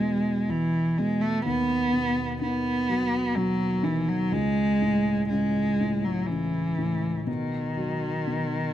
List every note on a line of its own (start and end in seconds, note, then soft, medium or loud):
0.00 1.42 E2 soft
0.00 0.98 B2 soft
0.00 0.47 E3 soft
0.00 0.51 G#3 medium
0.48 1.42 E3 soft
0.48 1.00 E3 medium
0.98 1.44 B2 soft
0.98 1.23 G#3 medium
1.21 1.45 A3 medium
1.46 4.30 D#2 medium
1.46 2.37 B3 medium
1.92 3.35 B2 soft
2.41 3.81 D#3 soft
2.41 3.37 B3 medium
2.89 4.29 F#3 soft
3.36 4.30 B2 medium
3.36 3.85 F#3 medium
3.83 4.31 D#3 medium
3.83 4.10 E3 medium
4.09 4.34 F#3 medium
4.32 7.23 C#2 medium
4.32 5.28 G#3 loud
4.82 5.79 A2 soft
5.29 6.28 C#3 soft
5.29 6.06 G#3 medium
5.81 6.77 A2 medium
6.04 6.28 F#3 medium
6.27 7.25 C#3 soft
6.27 7.28 E3 medium
6.78 7.26 A2 soft
7.26 8.25 B2 soft
7.26 8.73 D#3 medium
7.77 8.73 F#3 soft
8.27 8.73 B2 soft